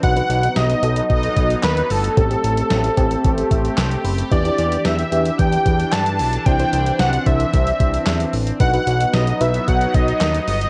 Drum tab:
HH |xxxxxxxxxxxxxxox|xxxxxxxxxxxxxxox|xxxxxxxxxxxxxxox|xxxxxxxxxxxxxxox|
CP |------------x---|------------x---|------------x---|------------x---|
SD |----o-------o---|----o-------o---|----o-------o---|----o-------o---|
BD |o-------o-o-----|o-----o-o-o-----|o-------o-o-----|o-----o-o-o-----|

HH |xxxxxxxxxxxxxxox|
CP |------------x---|
SD |----o-------o---|
BD |o-------o-o-----|